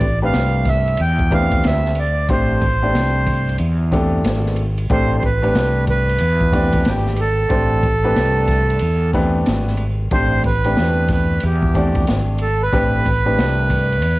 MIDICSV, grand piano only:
0, 0, Header, 1, 2, 480
1, 0, Start_track
1, 0, Key_signature, 0, "minor"
1, 0, Tempo, 652174
1, 1685, Time_signature, 4, 2, 24, 8
1, 10447, End_track
2, 0, Start_track
2, 0, Title_t, "Grand piano"
2, 0, Program_c, 0, 0
2, 162, Note_on_c, 0, 57, 65
2, 165, Note_on_c, 0, 60, 63
2, 166, Note_on_c, 0, 62, 58
2, 168, Note_on_c, 0, 67, 61
2, 170, Note_on_c, 0, 71, 77
2, 710, Note_off_c, 0, 57, 0
2, 712, Note_off_c, 0, 60, 0
2, 713, Note_off_c, 0, 62, 0
2, 713, Note_off_c, 0, 67, 0
2, 715, Note_off_c, 0, 71, 0
2, 962, Note_on_c, 0, 57, 66
2, 964, Note_on_c, 0, 59, 50
2, 966, Note_on_c, 0, 62, 68
2, 970, Note_on_c, 0, 67, 62
2, 971, Note_on_c, 0, 71, 78
2, 1010, Note_on_c, 0, 60, 62
2, 1026, Note_off_c, 0, 59, 0
2, 1462, Note_off_c, 0, 57, 0
2, 1464, Note_off_c, 0, 62, 0
2, 1466, Note_off_c, 0, 67, 0
2, 1466, Note_off_c, 0, 71, 0
2, 1486, Note_off_c, 0, 60, 0
2, 1680, Note_on_c, 0, 57, 71
2, 1686, Note_on_c, 0, 60, 67
2, 1688, Note_on_c, 0, 62, 65
2, 1690, Note_on_c, 0, 67, 66
2, 1690, Note_on_c, 0, 72, 85
2, 1932, Note_off_c, 0, 57, 0
2, 1935, Note_off_c, 0, 60, 0
2, 1936, Note_off_c, 0, 62, 0
2, 1937, Note_off_c, 0, 67, 0
2, 1937, Note_off_c, 0, 72, 0
2, 2077, Note_on_c, 0, 57, 70
2, 2078, Note_on_c, 0, 59, 44
2, 2079, Note_on_c, 0, 62, 60
2, 2082, Note_on_c, 0, 67, 63
2, 2087, Note_on_c, 0, 74, 69
2, 2113, Note_off_c, 0, 59, 0
2, 2127, Note_on_c, 0, 60, 63
2, 2628, Note_off_c, 0, 57, 0
2, 2629, Note_off_c, 0, 62, 0
2, 2630, Note_off_c, 0, 67, 0
2, 2633, Note_off_c, 0, 74, 0
2, 2653, Note_off_c, 0, 60, 0
2, 2881, Note_on_c, 0, 57, 76
2, 2886, Note_on_c, 0, 60, 75
2, 2886, Note_on_c, 0, 62, 78
2, 2889, Note_on_c, 0, 69, 87
2, 2890, Note_on_c, 0, 67, 77
2, 3381, Note_off_c, 0, 57, 0
2, 3384, Note_off_c, 0, 60, 0
2, 3384, Note_off_c, 0, 62, 0
2, 3386, Note_off_c, 0, 67, 0
2, 3386, Note_off_c, 0, 69, 0
2, 3603, Note_on_c, 0, 57, 73
2, 3606, Note_on_c, 0, 60, 74
2, 3607, Note_on_c, 0, 62, 70
2, 3609, Note_on_c, 0, 67, 72
2, 3612, Note_on_c, 0, 69, 81
2, 3853, Note_off_c, 0, 57, 0
2, 3855, Note_off_c, 0, 60, 0
2, 3855, Note_off_c, 0, 62, 0
2, 3856, Note_off_c, 0, 67, 0
2, 3858, Note_off_c, 0, 69, 0
2, 3992, Note_on_c, 0, 57, 75
2, 3994, Note_on_c, 0, 60, 62
2, 3996, Note_on_c, 0, 62, 61
2, 3999, Note_on_c, 0, 67, 68
2, 4003, Note_on_c, 0, 71, 80
2, 4545, Note_off_c, 0, 57, 0
2, 4546, Note_off_c, 0, 60, 0
2, 4548, Note_off_c, 0, 62, 0
2, 4549, Note_off_c, 0, 67, 0
2, 4551, Note_off_c, 0, 71, 0
2, 4797, Note_on_c, 0, 57, 63
2, 4800, Note_on_c, 0, 59, 50
2, 4801, Note_on_c, 0, 62, 63
2, 4804, Note_on_c, 0, 67, 61
2, 4807, Note_on_c, 0, 74, 81
2, 4846, Note_on_c, 0, 60, 62
2, 4863, Note_off_c, 0, 59, 0
2, 5299, Note_off_c, 0, 57, 0
2, 5301, Note_off_c, 0, 62, 0
2, 5303, Note_off_c, 0, 67, 0
2, 5304, Note_off_c, 0, 74, 0
2, 5324, Note_off_c, 0, 60, 0
2, 5515, Note_on_c, 0, 57, 80
2, 5517, Note_on_c, 0, 60, 70
2, 5521, Note_on_c, 0, 67, 69
2, 5523, Note_on_c, 0, 62, 69
2, 5526, Note_on_c, 0, 72, 80
2, 5769, Note_off_c, 0, 57, 0
2, 5770, Note_off_c, 0, 60, 0
2, 5772, Note_off_c, 0, 67, 0
2, 5773, Note_off_c, 0, 62, 0
2, 5775, Note_off_c, 0, 72, 0
2, 5915, Note_on_c, 0, 57, 77
2, 5918, Note_on_c, 0, 60, 71
2, 5918, Note_on_c, 0, 62, 67
2, 5922, Note_on_c, 0, 67, 73
2, 5923, Note_on_c, 0, 71, 90
2, 6467, Note_off_c, 0, 57, 0
2, 6468, Note_off_c, 0, 60, 0
2, 6468, Note_off_c, 0, 62, 0
2, 6471, Note_off_c, 0, 67, 0
2, 6471, Note_off_c, 0, 71, 0
2, 6721, Note_on_c, 0, 57, 77
2, 6724, Note_on_c, 0, 60, 71
2, 6727, Note_on_c, 0, 62, 69
2, 6727, Note_on_c, 0, 67, 69
2, 6732, Note_on_c, 0, 71, 90
2, 7221, Note_off_c, 0, 57, 0
2, 7223, Note_off_c, 0, 60, 0
2, 7224, Note_off_c, 0, 62, 0
2, 7224, Note_off_c, 0, 67, 0
2, 7227, Note_off_c, 0, 71, 0
2, 7442, Note_on_c, 0, 57, 71
2, 7444, Note_on_c, 0, 60, 66
2, 7446, Note_on_c, 0, 62, 68
2, 7448, Note_on_c, 0, 67, 70
2, 7451, Note_on_c, 0, 72, 76
2, 7693, Note_off_c, 0, 57, 0
2, 7693, Note_off_c, 0, 60, 0
2, 7695, Note_off_c, 0, 62, 0
2, 7696, Note_off_c, 0, 67, 0
2, 7697, Note_off_c, 0, 72, 0
2, 7836, Note_on_c, 0, 57, 67
2, 7838, Note_on_c, 0, 60, 57
2, 7841, Note_on_c, 0, 62, 58
2, 7842, Note_on_c, 0, 67, 63
2, 7846, Note_on_c, 0, 71, 71
2, 8387, Note_off_c, 0, 57, 0
2, 8388, Note_off_c, 0, 60, 0
2, 8390, Note_off_c, 0, 62, 0
2, 8391, Note_off_c, 0, 67, 0
2, 8392, Note_off_c, 0, 71, 0
2, 8647, Note_on_c, 0, 57, 70
2, 8649, Note_on_c, 0, 60, 63
2, 8652, Note_on_c, 0, 62, 62
2, 8656, Note_on_c, 0, 67, 64
2, 8658, Note_on_c, 0, 74, 76
2, 9144, Note_off_c, 0, 57, 0
2, 9145, Note_off_c, 0, 60, 0
2, 9147, Note_off_c, 0, 62, 0
2, 9149, Note_off_c, 0, 67, 0
2, 9150, Note_off_c, 0, 74, 0
2, 9363, Note_on_c, 0, 57, 75
2, 9365, Note_on_c, 0, 60, 69
2, 9366, Note_on_c, 0, 62, 70
2, 9371, Note_on_c, 0, 67, 71
2, 9372, Note_on_c, 0, 71, 85
2, 9613, Note_off_c, 0, 57, 0
2, 9614, Note_off_c, 0, 60, 0
2, 9615, Note_off_c, 0, 62, 0
2, 9617, Note_off_c, 0, 67, 0
2, 9618, Note_off_c, 0, 71, 0
2, 9754, Note_on_c, 0, 57, 67
2, 9755, Note_on_c, 0, 60, 62
2, 9758, Note_on_c, 0, 62, 61
2, 9759, Note_on_c, 0, 67, 62
2, 9764, Note_on_c, 0, 71, 76
2, 10307, Note_off_c, 0, 57, 0
2, 10307, Note_off_c, 0, 60, 0
2, 10309, Note_off_c, 0, 62, 0
2, 10309, Note_off_c, 0, 67, 0
2, 10311, Note_off_c, 0, 71, 0
2, 10447, End_track
0, 0, End_of_file